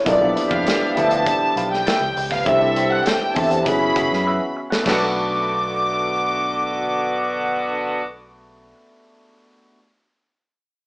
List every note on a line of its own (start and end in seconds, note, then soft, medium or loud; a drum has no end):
0.00 2.42 A3 medium
0.00 2.42 B3 medium
0.04 0.33 B1 loud
0.04 2.12 E3 medium
0.04 2.43 G3 medium
0.04 0.17 B3 medium
0.04 0.17 D4 medium
0.04 2.12 D4 medium
0.04 0.17 E4 medium
0.04 0.26 F4 medium
0.04 0.18 F4 medium
0.04 2.43 G4 medium
0.04 2.12 G4 medium
0.04 0.18 A4 medium
0.04 0.21 B4 medium
0.04 0.49 D5 medium
0.04 0.20 E5 loud
0.04 kick loud
0.04 closed hi-hat medium
0.19 0.79 F3 medium
0.19 0.27 A#3 medium
0.19 0.78 D4 medium
0.19 0.78 E4 medium
0.19 0.79 A4 medium
0.19 muted clean electric guitar stroke soft
0.25 0.81 B3 medium
0.36 muted clean electric guitar stroke soft
0.36 closed hi-hat medium
0.51 0.64 F2 medium
0.51 0.64 F4 soft
0.51 0.64 B4 medium
0.51 0.63 F5 medium
0.51 0.93 F5 medium
0.51 kick loud
0.66 muted clean electric guitar stroke soft
0.66 snare loud
0.66 closed hi-hat medium
0.81 muted clean electric guitar stroke soft
0.94 1.23 D2 medium
0.94 1.88 F3 medium
0.94 1.87 B3 medium
0.94 1.87 D4 medium
0.94 1.88 E4 medium
0.94 1.09 F4 medium
0.94 1.89 A4 medium
0.94 1.09 B4 medium
0.94 1.09 E5 medium
0.94 1.72 A5 loud
0.94 closed hi-hat medium
1.11 1.24 F4 soft
1.11 1.24 B4 medium
1.11 1.23 F5 medium
1.11 closed hi-hat medium
1.26 muted clean electric guitar stroke soft
1.26 kick medium
1.26 closed hi-hat medium
1.42 muted fingered electric bass stroke soft
1.56 1.82 B1 medium
1.56 1.68 F4 medium
1.56 1.69 B4 medium
1.56 1.69 F5 medium
1.56 closed hi-hat medium
1.72 2.27 G5 loud
1.72 muted clean electric guitar stroke soft
1.72 snare soft
1.86 2.02 F4 medium
1.86 2.02 B4 medium
1.86 2.02 E5 medium
1.86 snare loud
1.86 closed hi-hat medium
2.01 2.14 C#2 medium
2.16 2.43 C#2 medium
2.16 muted clean electric guitar stroke medium
2.16 open hi-hat medium
2.31 2.44 F4 soft
2.31 2.44 B4 medium
2.31 2.44 F5 medium
2.31 2.47 F5 medium
2.31 kick medium
2.31 snare soft
2.44 2.99 C2 loud
2.44 4.68 E3 medium
2.44 3.65 A3 medium
2.44 2.57 C4 medium
2.44 3.34 C4 medium
2.44 3.64 C4 medium
2.44 2.57 D4 medium
2.44 3.34 E4 medium
2.44 2.57 E4 medium
2.44 3.64 G4 medium
2.44 2.58 G4 medium
2.44 3.34 A4 medium
2.44 2.62 A4 medium
2.44 2.58 A4 medium
2.44 2.61 C5 medium
2.44 2.91 E5 loud
2.44 2.61 E5 loud
2.44 kick loud
2.44 closed hi-hat medium
2.60 3.18 C4 medium
2.60 3.18 D4 medium
2.60 3.18 E4 medium
2.60 3.19 G4 medium
2.60 3.19 A4 medium
2.60 muted clean electric guitar stroke soft
2.76 muted clean electric guitar stroke soft
2.76 closed hi-hat medium
2.92 3.04 A4 soft
2.92 3.04 C5 medium
2.92 3.06 F#5 medium
2.92 3.04 F#5 medium
3.06 3.36 G5 loud
3.06 snare loud
3.06 closed hi-hat medium
3.22 muted clean electric guitar stroke soft
3.34 3.63 E2 loud
3.34 3.65 C4 medium
3.34 3.65 D4 medium
3.34 3.64 E4 medium
3.34 3.66 G4 medium
3.34 3.48 A4 medium
3.34 3.66 A4 medium
3.34 3.49 C5 medium
3.34 3.49 E5 medium
3.34 3.66 A5 loud
3.34 kick loud
3.34 open hi-hat medium
3.51 3.64 A4 soft
3.51 3.64 C5 medium
3.51 3.63 F#5 medium
3.51 closed hi-hat medium
3.64 3.93 F#1 loud
3.64 4.61 B3 medium
3.64 4.68 B3 medium
3.64 4.61 C#4 medium
3.64 4.54 C#4 medium
3.64 4.68 C#4 medium
3.64 4.54 E4 medium
3.64 4.62 E4 medium
3.64 4.62 F#4 medium
3.64 4.68 F#4 medium
3.64 4.54 G#4 medium
3.64 4.63 G#4 medium
3.64 4.51 B5 loud
3.64 muted clean electric guitar stroke soft
3.64 kick medium
3.64 closed hi-hat medium
3.96 4.09 F#1 medium
3.96 4.08 F#4 medium
3.96 4.08 B4 medium
3.96 4.09 F#5 medium
3.96 kick medium
3.96 closed hi-hat medium
4.12 4.38 F#2 loud
4.12 muted clean electric guitar stroke soft
4.12 snare soft
4.26 4.41 F#4 medium
4.26 4.42 B4 medium
4.26 4.42 E5 medium
4.56 muted clean electric guitar stroke soft
4.70 4.83 F#4 soft
4.70 4.83 B4 soft
4.70 4.83 F#5 medium
4.70 snare medium
4.79 8.70 A3 medium
4.79 8.68 B3 medium
4.84 8.71 B1 loud
4.84 8.01 D3 medium
4.84 8.01 A3 medium
4.84 8.01 B3 medium
4.84 8.75 D4 medium
4.84 8.71 D4 medium
4.84 8.01 F#4 medium
4.84 8.76 A4 medium
4.84 8.01 D6 medium
4.84 kick medium
4.84 snare loud
4.84 crash medium
4.88 8.73 F#4 medium
4.88 8.74 A4 loud
4.88 8.77 B4 medium